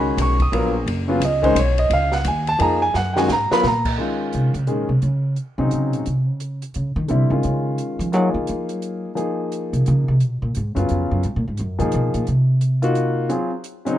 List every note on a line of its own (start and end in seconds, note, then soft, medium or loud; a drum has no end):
0.00 0.17 C#2 medium
0.00 0.35 D#3 medium
0.00 0.35 G#3 medium
0.00 0.35 C#4 medium
0.00 0.36 F#4 medium
0.00 0.17 B5 medium
0.17 0.51 B1 medium
0.17 hi-hat pedal medium
0.17 ride medium
0.22 0.41 C#6 medium
0.40 0.85 D#6 medium
0.40 kick medium
0.40 ride soft
0.52 0.86 A#1 medium
0.52 0.72 F#3 medium
0.52 0.72 B3 medium
0.52 0.72 F4 medium
0.52 0.73 A#4 medium
0.52 ride medium
0.86 1.20 F#1 medium
0.86 ride medium
1.08 1.20 C#3 medium
1.08 1.20 F#3 medium
1.08 1.20 B3 medium
1.08 1.20 F4 medium
1.20 1.54 C#2 medium
1.20 hi-hat pedal medium
1.20 ride medium
1.25 1.44 D#5 medium
1.42 1.54 D#3 medium
1.42 1.54 G#3 medium
1.42 1.55 C#4 medium
1.42 1.55 D#4 medium
1.42 1.56 C5 medium
1.42 kick medium
1.42 ride soft
1.55 1.89 B1 medium
1.55 hi-hat pedal medium
1.55 ride medium
1.59 1.79 C#5 medium
1.78 1.91 D#5 medium
1.78 ride soft
1.90 2.24 C#2 medium
1.90 2.13 F5 medium
1.90 ride medium
2.12 2.25 F#5 medium
2.12 snare medium
2.24 2.58 D#2 medium
2.24 2.48 G#5 medium
2.24 hi-hat pedal medium
2.24 ride medium
2.47 2.60 A5 loud
2.47 ride soft
2.59 2.93 F2 medium
2.59 2.79 F3 medium
2.59 2.79 A#3 medium
2.59 2.80 D#4 medium
2.59 2.80 G#4 medium
2.59 2.82 A#5 medium
2.59 ride medium
2.82 2.94 G#5 medium
2.94 3.28 F#2 medium
2.94 3.17 F#5 medium
2.94 snare soft
3.13 3.27 D#3 medium
3.13 3.27 G#3 medium
3.13 3.28 C#4 medium
3.13 3.15 G5 medium
3.13 snare medium
3.17 3.28 F#4 medium
3.17 3.29 G#5 medium
3.29 3.49 G#2 medium
3.29 3.52 A#5 medium
3.29 snare medium
3.29 hi-hat pedal medium
3.51 3.62 F#3 medium
3.51 3.62 B3 medium
3.51 3.63 F4 medium
3.51 3.63 A#4 medium
3.51 3.64 B5 loud
3.51 muted upright bass stroke soft
3.51 snare medium
3.63 3.97 A#2 medium
3.63 snare medium
3.67 3.92 A#5 medium
3.85 kick medium
3.85 crash medium
3.98 4.50 D#3 soft
3.98 4.50 G#3 soft
3.98 4.50 C#4 soft
3.98 4.51 F4 soft
4.33 4.53 C3 medium
4.33 closed hi-hat soft
4.54 4.68 C#3 medium
4.54 closed hi-hat soft
4.67 4.88 A#2 medium
4.67 4.87 D#3 soft
4.67 4.87 G#3 soft
4.67 4.87 C#4 soft
4.67 4.87 G#4 medium
4.67 closed hi-hat soft
4.89 5.01 C3 medium
5.02 5.34 C#3 medium
5.02 closed hi-hat soft
5.36 closed hi-hat soft
5.58 5.70 C3 medium
5.58 6.03 C#3 medium
5.58 6.03 F#3 soft
5.58 6.03 C4 medium
5.58 6.03 D#4 medium
5.71 5.94 C#3 medium
5.71 closed hi-hat soft
5.93 6.05 A#2 medium
5.93 closed hi-hat soft
6.06 6.27 C3 medium
6.06 closed hi-hat soft
6.27 6.62 C#3 medium
6.40 closed hi-hat soft
6.62 closed hi-hat soft
6.74 6.95 C#3 medium
6.74 closed hi-hat soft
6.96 7.08 D#3 medium
7.08 7.30 C3 medium
7.08 7.28 D3 soft
7.08 7.28 G3 soft
7.08 7.29 C4 soft
7.08 7.29 E4 medium
7.08 closed hi-hat soft
7.30 7.43 C#3 medium
7.30 8.04 D#3 soft
7.30 8.05 G#3 soft
7.30 8.05 C#4 soft
7.30 8.05 F4 medium
7.43 7.76 C#3 medium
7.43 closed hi-hat soft
7.78 closed hi-hat soft
7.99 8.14 F3 medium
7.99 closed hi-hat soft
8.12 8.34 F#3 medium
8.12 9.09 A#3 soft
8.12 9.09 D#4 soft
8.12 9.08 F4 soft
8.12 9.09 G#4 medium
8.12 closed hi-hat soft
8.34 8.47 D#3 medium
8.47 8.70 F3 medium
8.47 closed hi-hat soft
8.69 9.04 F#3 medium
8.69 closed hi-hat soft
8.82 closed hi-hat soft
9.15 10.11 F3 soft
9.15 10.12 A#3 soft
9.15 10.12 D#4 soft
9.15 10.12 G#4 medium
9.15 closed hi-hat soft
9.52 closed hi-hat soft
9.73 9.85 C3 medium
9.73 closed hi-hat soft
9.86 10.08 C#3 medium
9.86 closed hi-hat soft
10.08 10.23 C3 medium
10.20 10.41 B2 medium
10.20 closed hi-hat soft
10.42 10.54 A#2 medium
10.55 10.76 G#2 medium
10.55 closed hi-hat soft
10.75 10.88 F#2 medium
10.75 11.20 C#3 medium
10.75 11.20 F#3 soft
10.75 11.21 B3 soft
10.75 11.21 F4 medium
10.75 closed hi-hat soft
10.89 11.11 F2 medium
10.89 closed hi-hat soft
11.11 11.23 F#2 medium
11.23 11.35 G#2 medium
11.23 closed hi-hat soft
11.36 11.47 A#2 medium
11.48 11.58 G#2 medium
11.57 11.79 F#2 medium
11.57 closed hi-hat soft
11.79 11.92 A#2 medium
11.79 12.24 F3 medium
11.79 12.24 A#3 medium
11.79 12.24 D#4 medium
11.79 12.24 G#4 medium
11.79 closed hi-hat soft
11.92 12.14 B2 medium
11.92 closed hi-hat soft
12.14 12.26 A#2 medium
12.14 closed hi-hat soft
12.27 13.27 C3 medium
12.27 closed hi-hat soft
12.61 closed hi-hat soft
12.82 13.27 A#3 medium
12.82 13.28 D#4 medium
12.82 13.27 F4 medium
12.82 13.28 F#4 medium
12.82 closed hi-hat soft
12.95 closed hi-hat soft
13.29 13.49 F#3 medium
13.29 13.49 C4 soft
13.29 13.50 F4 soft
13.29 13.50 G#4 medium
13.29 closed hi-hat soft
13.64 closed hi-hat soft
13.85 13.97 C#3 medium
13.85 13.98 F#3 medium
13.85 13.98 C4 medium
13.85 13.98 D#4 medium
13.85 closed hi-hat soft